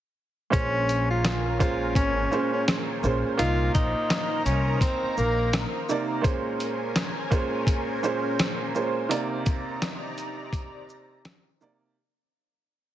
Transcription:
0.50 1.92 A#1 loud
0.50 1.36 A#2 medium
0.50 1.36 G#3 medium
0.50 1.37 C#4 medium
0.50 1.06 C#4 loud
0.50 3.36 C#4 medium
0.50 3.36 A#4 medium
0.50 1.37 C5 loud
0.50 6.21 C5 medium
0.50 3.36 G#5 medium
0.50 kick loud
0.50 closed hi-hat loud
0.89 closed hi-hat medium
0.89 shaker medium
1.10 1.57 F4 medium
1.25 cross-stick medium
1.25 snare loud
1.25 closed hi-hat medium
1.59 2.27 A#2 medium
1.59 2.27 G#3 medium
1.59 2.27 C#4 medium
1.59 1.92 F4 medium
1.59 2.27 C5 loud
1.59 kick medium
1.59 closed hi-hat medium
1.59 shaker soft
1.95 2.24 G#1 loud
1.95 2.49 C#4 medium
1.95 kick medium
1.95 closed hi-hat medium
2.31 2.98 A#2 medium
2.31 2.99 G#3 medium
2.31 2.99 C#4 medium
2.31 2.99 C5 loud
2.31 shaker medium
2.53 2.66 C#4 medium
2.68 cross-stick medium
2.68 snare loud
2.68 closed hi-hat medium
3.03 3.20 A#1 loud
3.03 3.36 A#2 medium
3.03 3.37 G#3 medium
3.03 3.37 C#4 medium
3.03 3.37 C5 medium
3.03 shaker medium
3.37 3.68 C2 loud
3.37 5.71 A#2 loud
3.37 5.71 A#3 medium
3.37 5.72 D#4 medium
3.37 6.22 D#4 medium
3.37 3.71 F4 loud
3.37 6.22 A#4 medium
3.37 5.72 D#5 loud
3.37 6.22 A#5 loud
3.37 closed hi-hat loud
3.74 3.92 A#1 medium
3.74 4.42 D#4 medium
3.74 kick loud
3.74 closed hi-hat medium
3.74 shaker medium
4.10 cross-stick loud
4.10 snare loud
4.10 closed hi-hat medium
4.45 4.74 C2 medium
4.45 4.78 C#4 medium
4.45 closed hi-hat soft
4.45 shaker medium
4.81 5.14 C4 medium
4.81 kick loud
4.81 closed hi-hat medium
5.03 muted upright bass stroke soft
5.17 5.63 A#1 medium
5.17 5.71 A#3 medium
5.17 shaker medium
5.53 cross-stick medium
5.53 snare loud
5.53 closed hi-hat medium
5.89 6.22 C3 medium
5.89 6.23 A#3 medium
5.89 6.23 D#4 medium
5.89 6.23 D5 medium
5.89 shaker medium
6.21 7.07 A#2 medium
6.21 7.08 G#3 medium
6.21 7.08 C#4 medium
6.21 9.07 C#4 loud
6.21 9.07 A#4 medium
6.21 7.08 C5 loud
6.21 11.92 C5 medium
6.21 9.07 G#5 medium
6.21 kick loud
6.21 closed hi-hat loud
6.60 closed hi-hat medium
6.60 shaker medium
6.96 cross-stick medium
6.96 snare loud
6.96 closed hi-hat medium
7.30 7.98 A#2 loud
7.30 7.98 G#3 medium
7.30 7.99 C#4 medium
7.30 7.99 C5 loud
7.30 kick medium
7.30 closed hi-hat medium
7.30 shaker medium
7.67 kick loud
7.67 closed hi-hat medium
8.03 8.70 A#2 medium
8.03 8.70 G#3 medium
8.03 8.71 C#4 medium
8.03 8.71 C5 loud
8.03 shaker medium
8.39 cross-stick medium
8.39 snare loud
8.39 closed hi-hat medium
8.75 9.08 A#2 medium
8.75 9.08 G#3 medium
8.75 9.09 C#4 medium
8.75 9.09 C5 medium
8.75 shaker medium
9.09 11.43 C3 loud
9.09 11.43 A#3 medium
9.09 11.93 D#4 medium
9.09 11.43 D#4 medium
9.09 11.93 D5 medium
9.09 11.44 D5 medium
9.09 11.93 A#5 medium
9.09 closed hi-hat loud
9.46 kick loud
9.46 closed hi-hat medium
9.46 shaker medium
9.82 cross-stick medium
9.82 snare loud
9.82 closed hi-hat medium
10.18 closed hi-hat soft
10.18 shaker soft
10.53 kick loud
10.53 closed hi-hat medium
10.89 shaker medium
11.25 cross-stick loud
11.25 snare loud
11.25 closed hi-hat medium
11.61 11.94 C3 medium
11.61 11.94 A#3 medium
11.61 11.95 D#4 medium
11.61 11.95 D5 medium
11.61 shaker medium

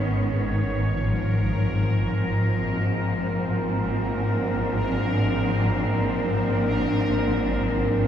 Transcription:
0.00 8.07 G#1 medium
0.00 8.07 G#2 medium
0.00 0.95 D#3 medium
0.00 0.96 G#3 medium
0.00 0.96 B3 medium
0.00 0.96 C#4 medium
0.00 0.97 C#5 medium
0.94 8.07 A#4 medium
0.98 8.07 F3 medium
1.52 8.07 C4 medium
2.48 8.07 A#3 medium
4.28 8.07 D4 medium

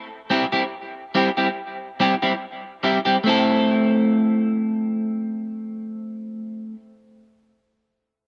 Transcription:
0.30 0.44 G3 medium
0.30 0.44 C4 medium
0.30 0.44 E4 medium
0.30 0.44 G4 medium
0.52 0.63 G3 soft
0.52 0.63 C4 soft
0.52 0.62 E4 medium
0.52 0.62 G4 medium
1.15 1.28 G3 medium
1.15 1.29 C4 medium
1.15 1.29 E4 medium
1.15 1.29 G4 medium
1.37 1.47 G3 soft
1.37 1.47 C4 medium
1.37 1.47 E4 soft
1.37 1.47 G4 medium
2.00 2.13 G3 medium
2.00 2.13 C4 medium
2.00 2.14 E4 medium
2.00 2.14 G4 medium
2.22 2.32 G3 soft
2.22 2.32 C4 medium
2.22 2.32 E4 medium
2.22 2.32 G4 medium
2.83 2.97 G3 medium
2.83 2.97 C4 medium
2.83 2.98 E4 medium
2.83 2.98 G4 medium
3.05 3.16 G3 soft
3.05 3.16 C4 soft
3.05 3.16 E4 medium
3.05 3.15 G4 medium
3.24 6.74 A3 medium
3.24 6.76 C4 medium
3.24 6.78 E4 medium
3.29 6.79 A4 medium

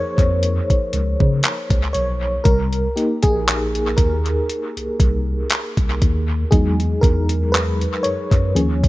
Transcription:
0.00 2.47 F3 medium
0.00 2.47 A#3 soft
0.00 2.47 D#4 medium
0.00 2.47 G#4 medium
0.00 2.44 A#4 loud
0.00 2.47 C5 medium
0.00 1.39 C#5 loud
0.18 0.60 F2 medium
0.18 kick medium
0.18 closed hi-hat soft
0.43 closed hi-hat medium
0.70 kick medium
0.70 closed hi-hat soft
0.93 1.15 C#2 medium
0.93 closed hi-hat medium
1.20 1.39 C#3 medium
1.20 kick medium
1.43 clap loud
1.43 closed hi-hat medium
1.70 1.90 C#2 medium
1.70 kick medium
1.70 closed hi-hat soft
1.93 2.36 B1 medium
1.93 2.41 C#5 loud
1.93 closed hi-hat medium
2.44 2.87 C2 loud
2.44 3.25 A#4 loud
2.44 kick loud
2.44 closed hi-hat medium
2.73 closed hi-hat soft
2.96 3.65 A#3 soft
2.96 3.66 D#4 medium
2.96 3.65 G4 medium
2.96 closed hi-hat medium
3.23 3.98 A#1 medium
3.23 3.93 G#4 medium
3.23 kick medium
3.23 closed hi-hat medium
3.48 clap loud
3.48 closed hi-hat medium
3.75 closed hi-hat soft
3.97 4.39 D#2 medium
3.97 5.97 A#4 medium
3.97 kick medium
3.97 closed hi-hat medium
4.26 closed hi-hat soft
4.50 closed hi-hat medium
4.77 4.86 C2 soft
4.77 closed hi-hat soft
5.00 5.41 C2 medium
5.00 kick medium
5.00 closed hi-hat medium
5.50 clap loud
5.50 closed hi-hat medium
5.77 6.01 C2 medium
5.77 kick medium
5.77 closed hi-hat soft
6.02 6.43 D#2 medium
6.02 kick medium
6.02 closed hi-hat medium
6.51 6.94 E2 loud
6.51 8.51 F#3 medium
6.51 8.51 G#3 soft
6.51 8.52 D#4 medium
6.51 7.04 G#4 medium
6.51 kick loud
6.51 closed hi-hat medium
6.80 closed hi-hat soft
7.01 7.86 E2 medium
7.01 7.55 A#4 medium
7.01 kick loud
7.01 closed hi-hat medium
7.29 closed hi-hat medium
7.52 8.05 B4 medium
7.52 clap loud
7.52 closed hi-hat medium
7.81 closed hi-hat soft
8.03 8.16 F#2 soft
8.03 8.88 C#5 medium
8.03 closed hi-hat medium
8.31 8.51 F#2 medium
8.31 kick medium
8.31 closed hi-hat soft
8.55 8.88 D#2 loud
8.55 8.88 F3 medium
8.55 8.88 C#4 medium
8.55 8.88 G#4 soft
8.55 closed hi-hat medium
8.84 kick medium
8.84 closed hi-hat soft

